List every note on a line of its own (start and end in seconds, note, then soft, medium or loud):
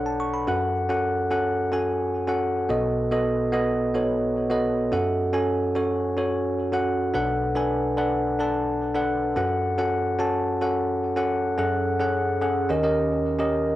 0.00 0.44 B1 medium
0.00 0.44 B2 medium
0.00 0.49 D4 medium
0.00 0.48 A4 medium
0.00 0.49 B4 medium
0.00 0.49 C#5 medium
0.00 0.48 F#5 loud
0.06 0.19 A5 medium
0.20 0.33 C#6 medium
0.34 0.60 B5 medium
0.47 2.66 F#2 medium
0.47 0.83 C#4 medium
0.47 0.83 F#4 medium
0.47 0.83 A4 medium
0.47 0.83 F#5 medium
0.89 1.25 C#4 medium
0.89 1.25 F#4 medium
0.89 1.25 A4 medium
0.89 1.25 F#5 medium
1.31 1.66 C#4 medium
1.31 1.66 F#4 medium
1.31 1.67 A4 medium
1.31 1.67 F#5 medium
1.72 2.20 C#4 medium
1.72 2.20 F#4 medium
1.72 2.20 A4 medium
1.72 2.20 G#5 medium
2.27 2.63 C#4 medium
2.27 2.63 F#4 medium
2.27 2.64 A4 medium
2.27 2.64 F#5 medium
2.69 4.88 B1 medium
2.69 4.88 B2 medium
2.69 3.05 B3 medium
2.69 3.05 F#4 medium
2.69 3.05 A4 medium
2.69 3.06 D#5 medium
3.11 3.47 B3 medium
3.11 3.47 F#4 medium
3.11 3.47 A4 medium
3.11 3.47 D#5 medium
3.52 3.88 B3 medium
3.52 3.88 F#4 medium
3.52 3.89 A4 medium
3.52 3.89 D#5 loud
3.94 4.42 B3 medium
3.94 4.42 F#4 medium
3.94 4.42 A4 medium
3.94 4.43 C#5 medium
4.50 4.86 B3 medium
4.50 4.86 F#4 medium
4.50 4.86 A4 medium
4.50 4.86 D#5 medium
4.92 7.10 F#2 medium
4.92 5.27 C#4 medium
4.92 5.28 F#4 medium
4.92 5.28 A4 medium
4.92 5.28 F#5 medium
5.33 5.69 C#4 medium
5.33 5.69 F#4 medium
5.33 5.69 A4 medium
5.33 5.69 G#5 medium
5.75 6.11 C#4 medium
5.75 6.11 F#4 medium
5.75 6.11 A4 medium
5.75 6.11 C#5 medium
6.17 6.64 C#4 medium
6.17 6.65 F#4 medium
6.17 6.65 A4 medium
6.17 6.65 C#5 medium
6.72 7.08 C#4 medium
6.72 7.08 F#4 medium
6.72 7.08 A4 medium
6.72 7.09 F#5 medium
7.14 9.33 B1 medium
7.14 9.32 B2 medium
7.14 7.49 D4 medium
7.14 7.50 A4 medium
7.14 7.50 B4 medium
7.14 7.50 F#5 medium
7.55 7.91 D4 medium
7.55 7.91 A4 medium
7.55 7.91 B4 medium
7.55 7.92 G#5 loud
7.97 8.33 D4 medium
7.97 8.33 A4 medium
7.97 8.33 B4 medium
7.97 8.33 F#5 loud
8.39 8.87 D4 medium
8.39 8.87 A4 medium
8.39 8.87 B4 medium
8.39 8.87 A5 medium
8.94 9.30 D4 medium
8.94 9.30 A4 medium
8.94 9.31 B4 medium
8.94 9.31 F#5 loud
9.36 11.55 F#2 medium
9.36 9.72 C#4 medium
9.36 9.72 F#4 medium
9.36 9.72 A4 medium
9.36 9.72 F#5 medium
9.78 10.13 C#4 medium
9.78 10.14 F#4 medium
9.78 10.14 A4 medium
9.78 10.14 F#5 medium
10.19 10.55 C#4 medium
10.19 10.55 F#4 medium
10.19 10.55 A4 medium
10.19 10.55 A5 medium
10.61 11.09 C#4 medium
10.61 11.09 F#4 medium
10.61 11.09 A4 medium
10.61 11.09 F#5 medium
11.16 11.52 C#4 medium
11.16 11.52 F#4 medium
11.16 11.52 A4 medium
11.16 11.53 F#5 loud
11.58 12.66 F#2 medium
11.58 11.94 C#4 medium
11.58 11.94 G#4 medium
11.58 11.94 A4 medium
11.58 11.94 F#5 medium
12.00 12.36 C#4 medium
12.00 12.36 G#4 medium
12.00 12.36 A4 medium
12.00 12.36 F#5 medium
12.41 12.68 C#4 medium
12.41 12.70 G#4 medium
12.41 12.70 A4 medium
12.41 12.70 F#5 medium
12.69 13.76 D#2 medium
12.69 13.76 D#3 medium
12.69 12.81 C#4 medium
12.69 12.82 G4 medium
12.69 12.82 A#4 medium
12.69 12.82 D#5 medium
12.83 13.31 C#4 medium
12.83 13.31 G4 medium
12.83 13.31 A#4 medium
12.83 13.31 D#5 medium
13.39 13.74 C#4 medium
13.39 13.75 G4 medium
13.39 13.75 A#4 medium
13.39 13.75 D#5 medium